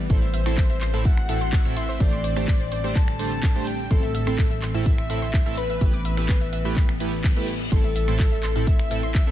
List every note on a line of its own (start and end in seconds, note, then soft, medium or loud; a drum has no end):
0.00 1.96 E3 medium
0.10 1.98 A1 medium
0.10 0.21 A2 medium
0.10 1.99 A3 medium
0.10 3.87 C4 medium
0.10 0.21 C4 medium
0.10 0.21 E4 medium
0.10 0.21 A4 loud
0.10 1.01 C5 loud
0.10 0.18 C6 loud
0.10 kick loud
0.10 closed hi-hat medium
0.22 0.30 E5 medium
0.22 closed hi-hat soft
0.34 0.42 E5 medium
0.34 open hi-hat loud
0.46 0.56 A2 medium
0.46 0.56 C4 medium
0.46 0.56 E4 medium
0.46 0.56 A4 loud
0.46 0.54 C6 loud
0.46 finger snap medium
0.46 closed hi-hat soft
0.57 0.66 E5 medium
0.57 kick loud
0.57 clap loud
0.57 closed hi-hat medium
0.70 0.78 E5 medium
0.70 closed hi-hat soft
0.81 0.90 C6 medium
0.81 clap medium
0.81 open hi-hat loud
0.94 1.10 A2 medium
0.94 1.10 C4 medium
0.94 1.10 E4 medium
0.94 1.10 A4 loud
0.94 1.01 E5 medium
0.94 closed hi-hat soft
1.05 1.13 E5 medium
1.05 1.73 F#5 loud
1.05 1.78 F#5 loud
1.05 kick loud
1.05 closed hi-hat medium
1.17 finger snap medium
1.17 closed hi-hat soft
1.29 1.40 A2 medium
1.29 1.40 C4 medium
1.29 1.40 E4 medium
1.29 1.40 A4 medium
1.29 1.37 E5 medium
1.29 open hi-hat loud
1.41 1.49 C6 medium
1.41 closed hi-hat soft
1.53 1.61 E5 medium
1.53 kick loud
1.53 clap loud
1.53 closed hi-hat medium
1.65 1.75 A2 loud
1.65 1.75 C4 medium
1.65 1.75 E4 medium
1.65 1.75 A4 loud
1.65 1.73 E5 medium
1.76 1.99 E5 loud
1.76 2.02 E5 loud
1.76 1.85 C6 loud
1.76 open hi-hat loud
1.89 1.97 C5 medium
1.89 closed hi-hat soft
2.00 3.89 A1 medium
2.00 3.89 D3 medium
2.00 3.89 G3 medium
2.00 2.11 A3 medium
2.00 2.11 D4 medium
2.00 2.11 G4 medium
2.00 2.11 C5 loud
2.00 2.09 C5 medium
2.00 2.92 D5 loud
2.00 2.95 D5 loud
2.00 kick loud
2.00 closed hi-hat medium
2.13 2.20 C6 loud
2.13 closed hi-hat soft
2.24 2.32 C5 medium
2.24 open hi-hat loud
2.36 2.46 A3 medium
2.36 2.46 D4 medium
2.36 2.46 G4 medium
2.36 2.44 C5 medium
2.36 2.46 C5 loud
2.36 finger snap medium
2.36 closed hi-hat soft
2.48 kick loud
2.48 clap loud
2.48 closed hi-hat medium
2.60 2.68 C5 medium
2.60 closed hi-hat soft
2.72 2.80 C5 medium
2.72 open hi-hat medium
2.84 3.00 A3 medium
2.84 3.00 D4 medium
2.84 3.00 G4 medium
2.84 3.00 C5 loud
2.84 3.82 C6 loud
2.84 closed hi-hat soft
2.95 3.63 A5 loud
2.95 3.68 A5 loud
2.95 kick loud
2.95 clap medium
2.95 closed hi-hat medium
3.08 finger snap medium
3.08 closed hi-hat soft
3.19 3.30 A3 medium
3.19 3.30 D4 medium
3.19 3.30 G4 medium
3.19 3.30 C5 medium
3.19 open hi-hat loud
3.32 closed hi-hat soft
3.43 kick loud
3.43 clap loud
3.43 closed hi-hat medium
3.55 3.65 A3 loud
3.55 3.65 D4 medium
3.55 3.65 G4 medium
3.55 3.65 C5 loud
3.67 3.90 G5 loud
3.67 3.89 G5 loud
3.67 open hi-hat medium
3.79 closed hi-hat soft
3.91 5.79 A1 medium
3.91 4.02 A2 medium
3.91 9.31 E3 medium
3.91 5.79 A3 medium
3.91 4.01 C4 medium
3.91 5.79 C4 medium
3.91 4.02 E4 medium
3.91 4.58 A4 medium
3.91 4.02 A4 medium
3.91 4.58 A4 medium
3.91 3.99 C6 loud
3.91 kick loud
3.91 closed hi-hat medium
4.03 4.11 E5 medium
4.03 closed hi-hat soft
4.14 4.23 E5 medium
4.14 open hi-hat loud
4.27 4.37 A2 medium
4.27 4.37 C4 medium
4.27 4.37 E4 medium
4.27 4.37 A4 loud
4.27 4.35 C6 loud
4.27 finger snap medium
4.27 closed hi-hat soft
4.38 4.47 E5 medium
4.38 kick loud
4.38 clap loud
4.38 closed hi-hat medium
4.51 4.58 E5 medium
4.51 closed hi-hat soft
4.62 4.71 C6 medium
4.62 clap medium
4.62 open hi-hat medium
4.74 4.91 A2 medium
4.74 4.91 C4 medium
4.74 4.91 E4 medium
4.74 4.91 A4 loud
4.74 4.82 E5 medium
4.74 closed hi-hat soft
4.86 5.59 E5 loud
4.86 4.94 E5 medium
4.86 5.53 E5 loud
4.86 kick loud
4.86 closed hi-hat loud
4.98 finger snap medium
4.98 closed hi-hat soft
5.10 5.21 A2 medium
5.10 5.21 C4 medium
5.10 5.21 E4 medium
5.10 5.21 A4 medium
5.10 5.18 E5 medium
5.10 open hi-hat loud
5.22 5.30 C6 medium
5.22 closed hi-hat soft
5.33 5.42 E5 medium
5.33 kick loud
5.33 clap loud
5.33 closed hi-hat loud
5.46 5.56 A2 loud
5.46 5.56 C4 medium
5.46 5.56 E4 medium
5.46 5.56 A4 loud
5.46 5.54 E5 medium
5.57 7.20 B4 loud
5.57 7.24 B4 loud
5.57 5.66 B5 medium
5.57 open hi-hat medium
5.70 5.78 E5 medium
5.70 closed hi-hat soft
5.81 7.69 A1 medium
5.81 7.70 G3 medium
5.81 5.92 A3 medium
5.81 7.70 B3 medium
5.81 5.92 E4 medium
5.81 5.92 G4 medium
5.81 5.92 B4 loud
5.81 5.90 E5 medium
5.81 kick loud
5.81 closed hi-hat loud
5.94 6.01 D6 medium
5.94 closed hi-hat soft
6.05 6.13 E5 medium
6.05 open hi-hat loud
6.17 6.27 A3 medium
6.17 6.27 E4 medium
6.17 6.27 G4 medium
6.17 6.27 B4 loud
6.17 6.25 E5 medium
6.17 finger snap medium
6.17 closed hi-hat soft
6.29 kick loud
6.29 clap loud
6.29 closed hi-hat loud
6.41 6.49 E5 medium
6.41 closed hi-hat soft
6.53 6.61 E5 medium
6.53 open hi-hat loud
6.65 6.81 A3 medium
6.65 6.81 E4 medium
6.65 6.81 G4 medium
6.65 6.81 B4 loud
6.65 7.63 F#6 loud
6.65 closed hi-hat soft
6.76 kick loud
6.76 clap medium
6.76 closed hi-hat loud
6.76 reverse cymbal medium
6.89 finger snap medium
6.89 closed hi-hat soft
7.00 7.11 A3 medium
7.00 7.11 E4 medium
7.00 7.11 G4 medium
7.00 7.11 B4 medium
7.00 open hi-hat loud
7.13 closed hi-hat soft
7.24 kick loud
7.24 clap loud
7.24 closed hi-hat medium
7.36 7.46 A3 loud
7.36 7.46 E4 medium
7.36 7.46 G4 medium
7.36 7.46 B4 loud
7.36 closed hi-hat soft
7.48 open hi-hat medium
7.60 closed hi-hat soft
7.72 9.31 A1 medium
7.72 7.82 A2 medium
7.72 9.31 A3 medium
7.72 9.31 C4 medium
7.72 7.82 C4 medium
7.72 7.82 E4 medium
7.72 7.82 A4 loud
7.72 8.63 A4 loud
7.72 8.69 A4 loud
7.72 7.80 C6 loud
7.72 kick loud
7.72 closed hi-hat loud
7.72 crash medium
7.72 shaker medium
7.83 7.92 E5 medium
7.83 closed hi-hat soft
7.83 shaker soft
7.95 8.04 E5 medium
7.95 open hi-hat loud
7.95 shaker medium
8.08 8.18 A2 loud
8.08 8.18 C4 medium
8.08 8.18 E4 medium
8.08 8.18 A4 loud
8.08 8.16 C6 loud
8.08 finger snap medium
8.08 closed hi-hat soft
8.08 shaker soft
8.19 8.28 E5 medium
8.19 kick loud
8.19 clap loud
8.19 closed hi-hat loud
8.19 shaker medium
8.32 8.39 E5 medium
8.32 closed hi-hat soft
8.32 shaker soft
8.43 8.52 C6 loud
8.43 clap medium
8.43 open hi-hat loud
8.43 shaker medium
8.56 8.72 A2 medium
8.56 8.72 C4 medium
8.56 8.72 E4 medium
8.56 8.72 A4 loud
8.56 8.63 E5 medium
8.56 closed hi-hat soft
8.56 shaker soft
8.67 9.31 E5 loud
8.67 8.75 E5 medium
8.67 9.31 E5 loud
8.67 kick loud
8.67 closed hi-hat loud
8.67 shaker medium
8.79 finger snap medium
8.79 closed hi-hat soft
8.79 shaker soft
8.91 9.02 A2 medium
8.91 9.02 C4 medium
8.91 9.02 E4 medium
8.91 9.02 A4 medium
8.91 8.99 E5 medium
8.91 open hi-hat loud
8.91 shaker loud
9.03 9.11 C6 medium
9.03 closed hi-hat soft
9.03 shaker soft
9.14 9.23 E5 medium
9.14 kick loud
9.14 clap loud
9.14 closed hi-hat loud
9.14 shaker medium
9.27 9.31 A2 loud
9.27 9.31 C4 medium
9.27 9.31 E4 medium
9.27 9.31 A4 loud
9.27 9.31 E5 medium
9.27 shaker soft